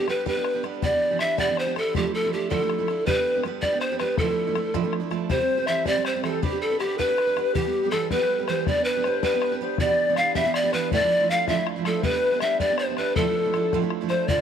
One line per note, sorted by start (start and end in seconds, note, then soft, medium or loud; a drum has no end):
0.00 0.07 B3 soft
0.00 0.11 G4 medium
0.08 0.25 G3 soft
0.08 0.25 B3 medium
0.08 0.26 D4 medium
0.08 0.26 G4 medium
0.08 0.27 B4 medium
0.08 bodhran medium
0.26 0.35 G3 medium
0.26 0.36 B3 medium
0.26 0.36 D4 medium
0.26 0.34 G4 medium
0.26 0.60 B4 medium
0.26 bodhran medium
0.35 0.56 B3 soft
0.35 0.55 D4 soft
0.35 0.53 G4 medium
0.44 bodhran medium
0.54 0.63 B3 soft
0.54 0.63 D4 soft
0.54 0.63 G4 medium
0.63 0.82 G3 medium
0.63 0.82 B3 medium
0.63 0.83 D4 medium
0.63 0.83 G4 medium
0.63 bodhran soft
0.82 0.92 E2 medium
0.82 0.92 B2 medium
0.82 0.92 E3 medium
0.82 0.92 B3 medium
0.82 0.92 D4 medium
0.82 0.91 G4 medium
0.82 1.18 D5 medium
0.82 bodhran medium
0.92 1.12 E3 soft
0.92 1.11 B3 soft
0.92 1.10 D4 soft
0.92 1.10 G4 soft
1.11 1.19 E3 soft
1.11 1.19 B3 soft
1.11 1.20 D4 soft
1.11 1.20 G4 soft
1.19 1.37 E3 soft
1.19 1.37 B3 soft
1.19 1.38 D4 medium
1.19 1.38 G4 medium
1.19 1.41 E5 medium
1.19 bodhran medium
1.38 1.47 E2 medium
1.38 1.48 B2 medium
1.38 1.48 E3 medium
1.38 1.48 B3 medium
1.38 1.47 D4 medium
1.38 1.46 G4 medium
1.38 1.61 D5 medium
1.38 bodhran medium
1.47 1.68 E3 soft
1.47 1.67 B3 soft
1.47 1.66 D4 soft
1.47 1.65 G4 soft
1.57 1.77 C5 medium
1.57 bodhran medium
1.66 1.74 E3 soft
1.66 1.75 B3 soft
1.66 1.76 D4 soft
1.66 1.76 G4 soft
1.76 1.94 E3 medium
1.76 1.95 B3 medium
1.76 1.95 D4 medium
1.76 1.96 G4 medium
1.76 1.98 A4 medium
1.76 bodhran medium
1.95 2.04 D2 medium
1.95 2.04 D3 medium
1.95 2.04 F3 medium
1.95 2.05 A3 medium
1.95 2.05 D4 medium
1.95 2.04 E4 medium
1.95 2.14 G4 medium
1.95 bodhran medium
2.05 2.24 F3 soft
2.05 2.24 A3 soft
2.05 2.24 D4 soft
2.05 2.23 E4 soft
2.14 2.35 A4 medium
2.24 2.31 F3 soft
2.24 2.32 A3 soft
2.24 2.33 D4 soft
2.24 2.33 E4 soft
2.33 2.50 F3 medium
2.33 2.50 A3 medium
2.33 2.50 D4 medium
2.33 2.51 E4 medium
2.33 2.52 G4 medium
2.50 2.60 D2 medium
2.50 2.60 D3 medium
2.50 2.60 F3 medium
2.50 2.60 A3 medium
2.50 2.60 D4 medium
2.50 2.59 E4 medium
2.50 3.08 A4 medium
2.50 bodhran medium
2.60 2.80 F3 soft
2.60 2.79 A3 soft
2.60 2.79 D4 soft
2.60 2.77 E4 medium
2.69 bodhran medium
2.79 2.87 F3 soft
2.79 2.88 A3 soft
2.79 2.89 D4 soft
2.79 2.88 E4 soft
2.88 3.06 F3 medium
2.88 3.07 A3 medium
2.88 3.07 D4 medium
2.88 3.08 E4 medium
2.88 bodhran medium
3.06 3.16 G3 medium
3.06 3.16 B3 medium
3.06 3.16 D4 medium
3.06 3.14 G4 medium
3.06 3.44 B4 medium
3.06 bodhran medium
3.15 3.36 B3 soft
3.15 3.35 D4 soft
3.15 3.33 G4 soft
3.34 3.44 B3 soft
3.34 3.45 D4 soft
3.34 3.44 G4 medium
3.43 3.62 G3 soft
3.43 3.63 B3 soft
3.43 3.63 D4 medium
3.43 3.64 G4 medium
3.43 bodhran medium
3.62 3.72 G3 medium
3.62 3.73 B3 medium
3.62 3.73 D4 medium
3.62 3.71 G4 medium
3.62 3.82 D5 medium
3.62 bodhran medium
3.72 3.92 B3 soft
3.72 3.92 D4 soft
3.72 3.90 G4 medium
3.81 3.98 C5 medium
3.81 bodhran medium
3.91 4.00 B3 soft
3.91 4.01 D4 soft
3.91 4.00 G4 medium
3.99 4.19 G3 soft
3.99 4.19 B3 medium
3.99 4.20 D4 medium
3.99 4.20 G4 medium
3.99 4.19 B4 medium
3.99 bodhran medium
4.18 4.29 D2 medium
4.18 4.29 A2 medium
4.18 4.29 F3 medium
4.18 4.29 A3 medium
4.18 4.29 D4 medium
4.18 4.27 E4 medium
4.18 4.93 A4 medium
4.18 bodhran loud
4.29 4.47 F3 soft
4.29 4.47 A3 soft
4.29 4.46 D4 soft
4.29 4.46 E4 soft
4.47 4.54 F3 soft
4.47 4.55 A3 soft
4.47 4.56 D4 soft
4.47 4.56 E4 medium
4.55 4.73 F3 soft
4.55 4.73 A3 medium
4.55 4.74 D4 medium
4.55 4.74 E4 medium
4.55 bodhran medium
4.74 4.84 D2 medium
4.74 4.84 A2 medium
4.74 4.84 F3 medium
4.74 4.83 A3 medium
4.74 4.82 D4 medium
4.74 4.82 E4 medium
4.74 bodhran medium
4.83 5.02 F3 soft
4.83 5.01 A3 soft
4.83 5.00 D4 medium
4.83 4.99 E4 medium
4.93 bodhran medium
5.00 5.09 F3 soft
5.00 5.10 A3 soft
5.00 5.11 D4 medium
5.00 5.11 E4 medium
5.11 5.29 F3 medium
5.11 5.30 A3 medium
5.11 5.30 D4 medium
5.11 5.31 E4 medium
5.11 bodhran medium
5.29 5.39 C3 medium
5.29 5.40 E3 medium
5.29 5.40 G3 medium
5.29 5.39 C4 medium
5.29 5.38 G4 medium
5.29 5.82 C5 medium
5.29 5.69 C5 medium
5.29 bodhran medium
5.39 5.58 G3 soft
5.39 5.58 C4 soft
5.39 5.56 G4 soft
5.57 5.66 G3 soft
5.57 5.67 C4 soft
5.57 5.67 G4 soft
5.67 5.85 E3 medium
5.67 5.86 G3 soft
5.67 5.86 C4 medium
5.67 5.86 G4 soft
5.67 5.88 E5 medium
5.67 bodhran medium
5.86 5.96 C3 medium
5.86 5.96 E3 medium
5.86 5.96 G3 medium
5.86 5.95 C4 medium
5.86 5.94 G4 medium
5.86 6.07 D5 medium
5.86 bodhran medium
5.95 6.15 G3 soft
5.95 6.14 C4 soft
5.95 6.13 G4 medium
6.05 6.24 C5 medium
6.05 6.23 C5 medium
6.05 bodhran medium
6.14 6.23 G3 soft
6.14 6.24 C4 soft
6.14 6.24 G4 soft
6.23 6.42 E3 medium
6.23 6.43 G3 medium
6.23 6.43 C4 medium
6.23 6.42 G4 medium
6.23 6.44 A4 medium
6.23 6.42 A4 medium
6.23 bodhran medium
6.42 6.52 B3 medium
6.42 6.52 D4 medium
6.42 6.60 G4 medium
6.42 6.51 G4 medium
6.42 6.50 B4 medium
6.42 bodhran medium
6.51 6.72 D4 soft
6.51 6.70 G4 soft
6.51 6.69 B4 soft
6.61 6.82 A4 medium
6.61 6.81 A4 medium
6.70 6.81 D4 soft
6.70 6.81 G4 soft
6.70 6.80 B4 soft
6.79 6.97 B3 soft
6.79 6.98 D4 medium
6.79 7.00 G4 medium
6.79 6.99 G4 medium
6.79 bodhran medium
6.83 6.99 B4 medium
6.98 7.08 B3 medium
6.98 7.09 D4 medium
6.98 7.09 G4 medium
6.98 7.56 B4 medium
6.98 7.57 B4 medium
6.98 7.08 B4 medium
6.98 bodhran medium
7.09 7.28 D4 soft
7.09 7.27 G4 soft
7.09 7.26 B4 medium
7.18 bodhran medium
7.27 7.36 D4 soft
7.27 7.37 G4 soft
7.27 7.36 B4 medium
7.36 7.55 B3 medium
7.36 7.56 D4 medium
7.36 7.56 G4 medium
7.36 7.56 B4 medium
7.36 bodhran medium
7.55 7.65 E3 medium
7.55 7.65 G3 medium
7.55 7.65 B3 medium
7.55 7.92 G4 loud
7.55 7.73 G4 medium
7.55 7.64 G4 medium
7.55 bodhran medium
7.65 7.84 G3 soft
7.65 7.83 B3 soft
7.65 7.82 G4 medium
7.74 7.94 G4 medium
7.83 7.92 G3 soft
7.83 7.93 B3 medium
7.83 7.92 G4 soft
7.91 8.10 E3 medium
7.91 8.11 G3 medium
7.91 8.11 B3 medium
7.91 8.12 G4 medium
7.91 8.10 A4 medium
7.91 8.11 A4 medium
7.91 bodhran medium
8.11 8.21 E3 medium
8.11 8.21 G3 medium
8.11 8.21 B3 medium
8.11 8.19 G4 medium
8.11 8.46 B4 medium
8.11 bodhran medium
8.20 8.40 G3 soft
8.20 8.39 B3 soft
8.20 8.37 G4 soft
8.38 8.49 G3 soft
8.38 8.49 B3 soft
8.38 8.48 G4 soft
8.48 8.67 E3 medium
8.48 8.66 G3 medium
8.48 8.67 B3 medium
8.48 8.68 G4 medium
8.48 8.66 C5 medium
8.48 8.70 C5 medium
8.48 bodhran medium
8.67 8.77 G3 medium
8.67 8.77 B3 medium
8.67 8.77 D4 medium
8.67 8.76 G4 medium
8.67 8.86 D5 loud
8.67 8.87 D5 medium
8.67 bodhran medium
8.77 8.97 B3 soft
8.77 8.96 D4 soft
8.77 8.95 G4 soft
8.84 9.23 B4 loud
8.84 9.04 B4 medium
8.96 9.05 B3 soft
8.96 9.06 D4 soft
8.96 9.05 G4 soft
9.04 9.22 G3 medium
9.04 9.22 B3 medium
9.04 9.23 D4 medium
9.04 9.23 G4 medium
9.04 9.26 C5 medium
9.04 bodhran medium
9.23 9.32 G3 medium
9.23 9.33 B3 medium
9.23 9.33 D4 medium
9.23 9.32 G4 medium
9.23 9.55 B4 medium
9.23 9.61 B4 medium
9.23 bodhran medium
9.33 9.53 B3 soft
9.33 9.52 D4 soft
9.33 9.51 G4 medium
9.42 bodhran medium
9.52 9.61 B3 soft
9.52 9.61 D4 soft
9.52 9.61 G4 medium
9.61 9.79 G3 medium
9.61 9.80 B3 medium
9.61 9.80 D4 medium
9.61 9.80 G4 medium
9.61 9.81 C5 medium
9.78 9.89 E2 medium
9.78 9.89 B2 medium
9.78 9.89 E3 medium
9.78 9.89 B3 medium
9.78 9.88 D4 medium
9.78 9.88 G4 medium
9.78 10.38 D5 medium
9.78 10.18 D5 loud
9.78 bodhran medium
9.89 10.09 E3 soft
9.89 10.08 B3 soft
9.89 10.08 D4 soft
9.89 10.06 G4 soft
10.07 10.16 E3 soft
10.07 10.17 B3 soft
10.07 10.18 D4 soft
10.07 10.17 G4 soft
10.16 10.35 E3 soft
10.16 10.35 B3 medium
10.16 10.35 D4 medium
10.16 10.36 G4 medium
10.16 10.35 F5 loud
10.16 bodhran medium
10.35 10.45 E2 medium
10.35 10.45 B2 medium
10.35 10.45 E3 medium
10.35 10.45 B3 medium
10.35 10.44 D4 medium
10.35 10.43 G4 medium
10.35 10.57 E5 loud
10.35 10.54 E5 medium
10.35 bodhran medium
10.44 10.65 E3 soft
10.44 10.64 B3 soft
10.44 10.63 D4 soft
10.44 10.62 G4 soft
10.54 10.72 D5 medium
10.54 10.75 D5 medium
10.54 bodhran medium
10.63 10.72 E3 soft
10.63 10.73 B3 soft
10.63 10.73 D4 soft
10.63 10.73 G4 medium
10.73 10.92 E3 medium
10.73 10.92 B3 medium
10.73 10.92 D4 medium
10.73 10.93 G4 medium
10.73 10.94 B4 medium
10.73 10.91 B4 medium
10.73 bodhran medium
10.92 11.01 D2 medium
10.92 11.01 A2 medium
10.92 11.02 F3 medium
10.92 11.01 A3 medium
10.92 11.01 D4 medium
10.92 11.00 E4 medium
10.92 11.31 D5 medium
10.92 11.32 D5 loud
10.92 bodhran medium
11.01 11.20 F3 soft
11.01 11.19 A3 soft
11.01 11.18 D4 soft
11.01 11.18 E4 soft
11.19 11.28 F3 soft
11.19 11.29 A3 soft
11.19 11.29 D4 medium
11.19 11.29 E4 medium
11.29 11.48 F3 soft
11.29 11.48 A3 soft
11.29 11.49 D4 medium
11.29 11.49 E4 medium
11.29 11.49 F5 medium
11.29 11.48 F5 medium
11.47 11.57 D2 medium
11.47 11.58 A2 medium
11.47 11.58 F3 medium
11.47 11.58 A3 medium
11.47 11.57 D4 medium
11.47 11.55 E4 medium
11.47 11.66 E5 medium
11.47 11.66 E5 loud
11.47 bodhran medium
11.57 11.77 F3 soft
11.57 11.77 A3 soft
11.57 11.76 D4 soft
11.57 11.75 E4 medium
11.67 bodhran medium
11.76 11.84 F3 soft
11.76 11.85 A3 soft
11.76 11.86 D4 soft
11.76 11.85 E4 soft
11.85 12.03 F3 medium
11.85 12.03 A3 medium
11.85 12.03 D4 medium
11.85 12.05 E4 medium
11.85 12.05 A4 medium
11.85 bodhran medium
11.97 12.05 C5 medium
12.03 12.13 G3 medium
12.03 12.13 B3 medium
12.03 12.13 D4 medium
12.03 12.11 G4 medium
12.03 12.43 B4 loud
12.03 12.42 B4 medium
12.03 bodhran medium
12.12 12.33 B3 soft
12.12 12.32 D4 soft
12.12 12.30 G4 soft
12.32 12.41 B3 soft
12.32 12.42 D4 soft
12.32 12.41 G4 soft
12.40 12.59 G3 medium
12.40 12.59 B3 medium
12.40 12.60 D4 medium
12.40 12.60 G4 medium
12.40 12.59 E5 medium
12.40 12.60 E5 medium
12.40 bodhran medium
12.59 12.70 G3 medium
12.59 12.70 B3 medium
12.59 12.70 D4 medium
12.59 12.69 G4 medium
12.59 12.77 D5 medium
12.59 12.80 D5 medium
12.59 bodhran medium
12.70 12.90 B3 soft
12.70 12.89 D4 soft
12.70 12.87 G4 soft
12.78 12.96 C5 medium
12.78 12.97 C5 medium
12.78 bodhran medium
12.89 12.98 B3 soft
12.89 12.99 D4 soft
12.89 12.98 G4 soft
12.96 13.17 G3 soft
12.96 13.17 B3 medium
12.96 13.17 D4 medium
12.96 13.17 B4 medium
12.96 bodhran medium
13.00 13.18 G4 medium
13.16 13.26 D2 medium
13.16 13.26 A2 medium
13.16 13.26 F3 medium
13.16 13.26 A3 medium
13.16 13.26 D4 medium
13.16 13.25 E4 medium
13.16 13.81 A4 medium
13.16 13.37 A4 medium
13.16 bodhran medium
13.26 13.46 F3 soft
13.26 13.45 A3 soft
13.26 13.44 D4 soft
13.26 13.43 E4 soft
13.36 13.42 B4 soft
13.40 13.63 A4 medium
13.45 13.53 F3 soft
13.45 13.54 A3 soft
13.45 13.54 D4 medium
13.45 13.54 E4 soft
13.54 13.73 F3 soft
13.54 13.73 A3 medium
13.54 13.74 D4 medium
13.54 13.74 E4 medium
13.54 bodhran medium
13.61 13.65 G4 soft
13.61 13.90 A4 medium
13.73 13.82 D2 medium
13.73 13.83 A2 medium
13.73 13.83 F3 medium
13.73 13.82 A3 medium
13.73 13.81 D4 medium
13.73 13.80 E4 medium
13.73 bodhran medium
13.82 14.02 F3 soft
13.82 14.01 A3 soft
13.82 14.01 D4 medium
13.82 14.00 E4 medium
13.90 bodhran medium
14.01 14.08 F3 soft
14.01 14.09 A3 soft
14.01 14.10 D4 soft
14.01 14.10 E4 soft
14.09 14.29 F3 medium
14.09 14.28 A3 medium
14.09 14.29 D4 medium
14.09 14.30 E4 medium
14.09 14.27 C5 medium
14.09 14.29 C5 medium
14.09 bodhran medium
14.28 14.41 D2 medium
14.28 14.41 A2 medium
14.28 14.41 D3 medium
14.28 14.41 A3 medium
14.28 14.41 D4 medium
14.28 14.41 F4 medium
14.28 14.41 D5 medium
14.28 14.41 D5 loud
14.28 bodhran medium